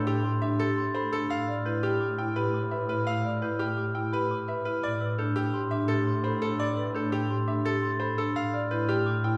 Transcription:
Already playing: A2 D4 A4 G6
0.07 G4 E6
0.24 C6
0.42 D4 E5 D6
0.59 G4 A4 A6
0.77 C6
0.94 A4 C5 B5
1.12 D4 A4 E6
1.30 A2 F5 E6
1.48 D5 F6
1.66 E4 B4 G6
1.83 G4 F6
2.01 D6
2.18 E4 G5 E6
2.36 G4 B4 B5
2.54 D6
2.71 B4 E5 B5
2.89 E4 B4 F6
3.07 F5 E6
3.24 D5 F6
3.42 E4 B4 G6
3.59 G4 F6
3.77 D6
3.95 E4 G5 E6
4.12 G4 B4 B5
4.31 D6
4.48 B4 E5 B5
4.65 E4 B4 F6
4.83 A2 D5 D6
5.01 B4 E6
5.18 D4 A4 G6
5.36 G4 E6
5.54 C6
5.71 D4 E5 D6
5.88 G4 A4 A6
6.07 C6
6.24 A4 C5 B5
6.42 D4 A4 E6
6.60 D5 D6
6.77 B4 E6
6.95 D4 A4 G6
7.12 G4 E6
7.30 C6
7.48 D4 E5 D6
7.65 G4 A4 A6
7.83 C6
8.00 A4 C5 B5
8.18 D4 A4 E6
8.36 A2 F5 E6
8.54 D5 F6
8.71 E4 B4 G6
8.89 G4 F6
9.06 D6
9.24 E4 G5 E6

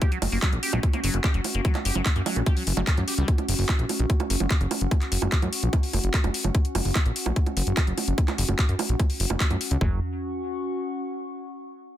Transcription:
Already playing: C#4 F#4 F#5 C#6
0.02 G4, kick, closed hi-hat
0.12 F#3, closed hi-hat
0.22 F#1, open hi-hat, high bongo
0.32 F#1 A#3, open hi-hat
0.42 F#3, kick, clap, closed hi-hat, high bongo
0.53 A#1 F#4, closed hi-hat
0.63 G4, open hi-hat
0.73 A#1 F#3, high bongo
0.83 kick, closed hi-hat
0.93 A#3, closed hi-hat, high bongo
1.04 F#1 F#3, open hi-hat
1.14 F#1 F#4, closed hi-hat
1.24 G4, kick, clap, closed hi-hat, high bongo
1.34 F#1 F#3, closed hi-hat
1.44 open hi-hat, high bongo
1.55 F#1 A#3, closed hi-hat
1.65 F#3, kick, closed hi-hat
1.75 F#4, clap, closed hi-hat, high bongo
1.85 F#1 G4, open hi-hat
1.95 F#1 F#3, high bongo
2.06 kick, clap, closed hi-hat
2.16 F#2 A#3, closed hi-hat
2.26 F#3, open hi-hat, high bongo
2.36 A#1 F#4, closed hi-hat
2.46 G4, kick, closed hi-hat, high bongo
2.57 F#3, open hi-hat
2.67 F#1, open hi-hat
2.77 F#1 F#3, closed hi-hat, high bongo
2.87 C#4, kick, clap, closed hi-hat
2.97 F#2 G4, closed hi-hat, high bongo
3.08 G4, open hi-hat
3.18 C#2 G3, closed hi-hat
3.28 kick, closed hi-hat
3.38 closed hi-hat, high bongo
3.48 F#1, open hi-hat
3.59 F#1, open hi-hat
3.69 kick, clap, high bongo
3.79 A#1, closed hi-hat
3.89 open hi-hat, high bongo
4.00 A#1, closed hi-hat
4.10 kick, closed hi-hat
4.20 closed hi-hat, high bongo
4.30 F#1, open hi-hat
4.40 F#1, closed hi-hat, high bongo
4.51 kick, clap, closed hi-hat
4.61 F#1, closed hi-hat
4.71 open hi-hat, high bongo
4.81 F#1, closed hi-hat
4.91 kick, closed hi-hat, high bongo
5.02 clap, closed hi-hat
5.12 F#1, open hi-hat
5.22 F#1, closed hi-hat, high bongo
5.32 kick, clap, closed hi-hat
5.42 F#2, closed hi-hat, high bongo
5.53 open hi-hat
5.63 A#1, closed hi-hat
5.73 kick, closed hi-hat, high bongo
5.83 open hi-hat
5.93 F#1, open hi-hat, high bongo
6.04 F#1, closed hi-hat
6.14 kick, clap, closed hi-hat
6.24 F#1, closed hi-hat, high bongo
6.34 open hi-hat
6.44 F#1, closed hi-hat, high bongo
6.55 kick, closed hi-hat
6.65 closed hi-hat
6.75 F#1, open hi-hat, high bongo
6.85 F#1, open hi-hat
6.95 kick, clap, closed hi-hat, high bongo
7.06 A#1, closed hi-hat
7.16 open hi-hat
7.26 A#1, closed hi-hat, high bongo
7.36 kick, closed hi-hat
7.46 closed hi-hat, high bongo
7.57 F#1, open hi-hat
7.67 F#1, closed hi-hat
7.77 kick, clap, closed hi-hat, high bongo
7.87 F#1, closed hi-hat
7.98 open hi-hat, high bongo
8.08 F#1, closed hi-hat
8.18 kick, closed hi-hat
8.28 clap, closed hi-hat, high bongo
8.38 F#1, open hi-hat
8.49 F#1, closed hi-hat, high bongo
8.59 kick, clap, closed hi-hat
8.69 F#2, closed hi-hat
8.79 open hi-hat, high bongo
8.89 A#1, closed hi-hat
9.00 kick, closed hi-hat, high bongo
9.10 open hi-hat
9.20 F#1, open hi-hat
9.30 F#1, high bongo
9.40 kick, clap, closed hi-hat
9.51 F#2, closed hi-hat, high bongo
9.61 open hi-hat
9.71 C#2, closed hi-hat
9.81 F#1 F#3 C#4, kick, floor tom
9.87 F#4
9.93 F#5
10.00 C#6

